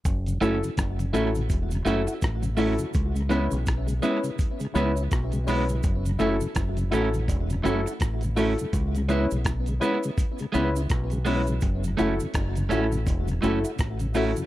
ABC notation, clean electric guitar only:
X:1
M:4/4
L:1/8
Q:"Swing 16ths" 1/4=83
K:F#m
V:1 name="Clean electric guitar"
z [A,CE] z [A,CE] z [A,CE] z [A,CE] | z [G,B,E] z [G,B,E] z [G,B,E] z [G,B,E] | z [A,CE] z [A,CE] z [A,CE] z [A,CE] | z [G,B,E] z [G,B,E] z [G,B,E] z [G,B,E] |
z [A,CE] z [A,CE] z [A,CE] z [A,CE] |]